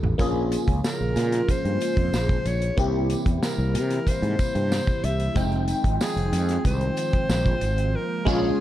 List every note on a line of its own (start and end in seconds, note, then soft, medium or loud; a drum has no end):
0.00 0.15 A1 medium
0.00 0.15 C4 medium
0.00 0.15 D#4 medium
0.00 0.15 G4 medium
0.00 0.16 A4 medium
0.00 floor tom medium
0.18 0.55 A#1 medium
0.18 2.75 C#3 medium
0.18 2.75 F3 medium
0.18 2.75 G#3 medium
0.18 2.73 A#3 medium
0.18 2.75 A#3 medium
0.18 2.73 C#4 medium
0.18 2.75 F4 medium
0.18 2.74 F4 medium
0.18 2.74 G#4 medium
0.18 kick loud
0.18 closed hi-hat medium
0.18 tambourine soft
0.52 closed hi-hat medium
0.52 tambourine soft
0.68 0.80 C#2 medium
0.68 kick medium
0.68 closed hi-hat medium
0.84 1.52 A#4 medium
0.84 snare loud
0.84 tambourine medium
1.01 1.12 A#1 medium
1.16 1.40 A#2 loud
1.16 snare soft
1.16 closed hi-hat medium
1.16 tambourine medium
1.32 snare soft
1.32 closed hi-hat medium
1.49 2.48 C5 loud
1.49 kick medium
1.49 closed hi-hat medium
1.49 tambourine soft
1.65 1.77 G2 medium
1.65 closed hi-hat soft
1.81 closed hi-hat medium
1.81 tambourine soft
1.97 2.09 F2 medium
1.97 kick medium
1.97 closed hi-hat soft
2.13 2.37 A#1 medium
2.13 snare medium
2.13 tambourine medium
2.29 kick loud
2.29 closed hi-hat soft
2.45 2.69 A#1 medium
2.45 2.78 C#5 medium
2.45 closed hi-hat medium
2.45 tambourine soft
2.62 closed hi-hat soft
2.77 3.14 C2 loud
2.77 5.33 C3 medium
2.77 5.33 E3 medium
2.77 5.33 G3 medium
2.77 5.32 A#3 medium
2.77 5.33 A#3 medium
2.77 5.32 C4 medium
2.77 5.33 E4 medium
2.77 5.33 G4 medium
2.77 kick loud
2.77 closed hi-hat medium
3.10 closed hi-hat medium
3.10 tambourine medium
3.26 3.38 E2 medium
3.26 kick medium
3.26 closed hi-hat medium
3.43 4.10 A#4 medium
3.43 snare loud
3.43 tambourine medium
3.58 3.76 C2 medium
3.74 3.98 C3 medium
3.74 closed hi-hat medium
3.74 tambourine soft
3.91 snare soft
3.91 closed hi-hat medium
4.07 5.06 C5 loud
4.07 kick medium
4.07 closed hi-hat loud
4.07 tambourine soft
4.22 4.35 G#2 loud
4.22 closed hi-hat soft
4.39 kick medium
4.39 closed hi-hat medium
4.39 tambourine medium
4.55 4.79 G2 medium
4.55 closed hi-hat soft
4.72 snare loud
4.72 tambourine medium
4.87 kick medium
4.87 closed hi-hat soft
5.04 5.28 C2 medium
5.04 5.36 E5 loud
5.04 closed hi-hat medium
5.04 tambourine soft
5.20 closed hi-hat soft
5.34 5.72 F1 loud
5.34 7.92 D#3 medium
5.34 8.60 F3 medium
5.34 7.90 G#3 medium
5.34 8.60 G#3 medium
5.34 7.91 C4 medium
5.34 7.92 C4 medium
5.34 7.91 D#4 medium
5.34 8.60 F4 medium
5.34 7.91 G5 medium
5.34 kick loud
5.34 closed hi-hat medium
5.34 tambourine soft
5.52 closed hi-hat soft
5.68 closed hi-hat medium
5.68 tambourine medium
5.84 5.96 G#1 medium
5.84 kick medium
5.84 closed hi-hat medium
6.01 6.62 G#4 medium
6.01 snare loud
6.01 tambourine medium
6.16 6.29 F1 medium
6.16 closed hi-hat soft
6.32 6.57 F2 medium
6.32 snare soft
6.32 closed hi-hat medium
6.32 tambourine soft
6.49 snare soft
6.49 closed hi-hat medium
6.65 6.89 C2 loud
6.65 7.97 C5 loud
6.65 kick medium
6.65 closed hi-hat medium
6.65 tambourine soft
6.81 closed hi-hat soft
6.97 closed hi-hat medium
6.97 tambourine soft
7.13 kick medium
7.13 closed hi-hat soft
7.29 7.54 A#1 loud
7.29 snare loud
7.29 tambourine medium
7.46 kick medium
7.46 closed hi-hat soft
7.61 7.94 G#1 medium
7.61 closed hi-hat medium
7.61 tambourine soft
7.78 closed hi-hat soft
7.95 8.60 C#3 medium
7.95 8.60 A#3 medium
7.95 8.29 A#4 medium
8.25 8.49 A#1 loud
8.25 8.48 G#3 loud
8.25 8.49 C#4 loud
8.25 8.49 F4 loud
8.25 8.60 G#4 medium
8.25 kick loud
8.25 snare loud
8.25 crash medium